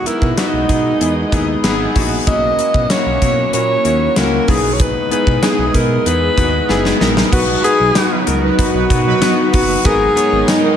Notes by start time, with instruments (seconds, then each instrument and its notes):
Already playing: synth keys B2 B3 D#4 E4 G#4, string machine G#3 D#5
0.06 synth keys B3 D#4 E4 A#4, alto saxophone E4, closed hi-hat
0.22 analog synth bass B2, kick
0.37 synth keys B3 D#4 E4 F#4, alto saxophone D#4, snare, closed hi-hat
0.53 analog synth bass B1
0.69 analog synth bass B2, synth keys B3 D#4 E4 G#4, kick, closed hi-hat
1.00 analog synth bass E2, synth keys B3 D#4 E4 G#4, closed hi-hat
1.32 analog synth bass D#2, synth keys B3 D#4 E4 G#4, kick, closed hi-hat
1.64 analog synth bass G#1, synth keys B3 D#4 E4 G#4, snare, closed hi-hat
1.95 analog synth bass A#1, synth keys B3 D#4 E4 F#4, kick, open hi-hat
2.26 analog synth bass B1, synth keys B2 A#3 C#4 E4 F#4, string machine F#3 A#3 E4, alto saxophone D#5, kick, closed hi-hat
2.58 synth keys A#3 C#4 E4 F#4, closed hi-hat
2.74 analog synth bass B2, kick
2.90 synth keys A#3 C#4 E4 F#4, alto saxophone C#5, snare, closed hi-hat
3.06 analog synth bass B1
3.21 analog synth bass B2, synth keys A#3 C#4 E4 F#4, kick, closed hi-hat
3.53 analog synth bass A#2, synth keys A#3 C#4 E4 F#4, alto saxophone C#5, closed hi-hat
3.84 analog synth bass D#2, synth keys A#3 C#4 E4 F#4, closed hi-hat
4.16 analog synth bass C#2, synth keys A#3 C#4 E4 F#4, alto saxophone A#4, snare, closed hi-hat
4.48 analog synth bass B1, synth keys B2 B3 D#4 E4 G#4, string machine G#3 D#5, alto saxophone G#4, kick, open hi-hat
4.73 alto saxophone C#5
4.80 alto saxophone B4, kick, closed hi-hat
5.11 synth keys B3 D#4 E4 G#4, alto saxophone B4, closed hi-hat
5.27 analog synth bass B2, kick
5.42 synth keys B3 D#4 E4 G#4, alto saxophone G#4, snare, closed hi-hat
5.59 analog synth bass B1
5.74 analog synth bass B2, synth keys B3 D#4 E4 G#4, alto saxophone A#4, kick, closed hi-hat
6.05 analog synth bass E2, synth keys B3 D#4 E4 G#4, alto saxophone B4, closed hi-hat
6.37 analog synth bass D#2, synth keys B3 D#4 E4 F#4, kick, closed hi-hat
6.69 analog synth bass F#1, synth keys B3 D#4 E4 G#4, snare
6.85 snare
7.00 analog synth bass A#1, synth keys B3 D#4 E4 A#4, snare
7.17 snare
7.32 analog synth bass B1, synth keys B2 B3 D#4 F#4 B4, string machine F#3 B3 D#4, alto saxophone F#4, kick, crash
7.63 synth keys B3 D#4 F#4 B4, alto saxophone G#4, closed hi-hat
7.80 analog synth bass B1
7.95 synth keys B3 D#4 F#4 B4, snare, closed hi-hat, tambourine
8.11 analog polysynth F#3 D#4 B4
8.26 analog synth bass C#2, synth keys B3 D#4 F#4 A#4, closed hi-hat
8.43 analog polysynth F#3 D#4 B4
8.58 synth keys B3 D#4 F#4 B4, alto saxophone F#4, kick, closed hi-hat
8.74 analog synth bass B1, analog polysynth F#3 D#4 B4
8.90 analog synth bass B2, synth keys B3 D#4 F#4 B4, kick, closed hi-hat
9.06 analog polysynth F#3 D#4 B4
9.21 synth keys B3 D#4 F#4 B4, snare, closed hi-hat, tambourine
9.53 analog synth bass F#1, synth keys B3 D#4 F#4 B4, alto saxophone F#4, kick, open hi-hat
9.84 analog synth bass G#1, synth keys G#2 B3 D#4 G#4 A#4, string machine G#3 B3 A#4, alto saxophone G#4, kick, closed hi-hat
10.16 synth keys B3 D#4 G#4 C#5, closed hi-hat
10.32 analog synth bass G#1
10.48 synth keys B3 D#4 G#4 A#4, alto saxophone D#4, snare, closed hi-hat, tambourine
10.64 analog polysynth D#3 B3 A#4